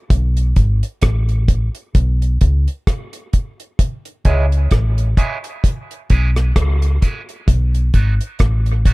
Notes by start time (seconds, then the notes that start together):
0.10 B1, kick, closed hi-hat
0.37 closed hi-hat
0.56 G#1, kick, closed hi-hat
0.83 closed hi-hat
1.02 A1, kick, cross-stick, closed hi-hat
1.29 closed hi-hat
1.48 kick, closed hi-hat
1.75 closed hi-hat
1.95 B1, kick, closed hi-hat
2.22 closed hi-hat
2.41 C#2, kick, closed hi-hat
2.68 closed hi-hat
2.87 kick, cross-stick, closed hi-hat
3.13 closed hi-hat
3.33 kick, closed hi-hat
3.60 closed hi-hat
3.79 kick, closed hi-hat
4.05 closed hi-hat
4.25 C#2 G#3 C#4 E4 G#4, kick, closed hi-hat
4.52 closed hi-hat
4.71 A1, kick, cross-stick, closed hi-hat
4.98 closed hi-hat
5.17 G#3 C#4 E4 G#4, kick, closed hi-hat
5.44 muted clean electric guitar stroke, closed hi-hat
5.64 kick, closed hi-hat
5.91 closed hi-hat
6.10 B1 G#3 C#4 E4 G#4, kick, closed hi-hat
6.36 cross-stick, closed hi-hat
6.56 C#2, kick, cross-stick, closed hi-hat
6.82 closed hi-hat
7.02 G#3 C#4 E4 G#4, kick, closed hi-hat
7.29 closed hi-hat
7.48 B1, kick, closed hi-hat
7.75 closed hi-hat
7.94 G#1 F#3 B3 D#4 F#4, kick, closed hi-hat
8.21 closed hi-hat
8.39 A1, kick, cross-stick, closed hi-hat
8.66 closed hi-hat
8.85 F#3 B3 D#4 F#4, kick, closed hi-hat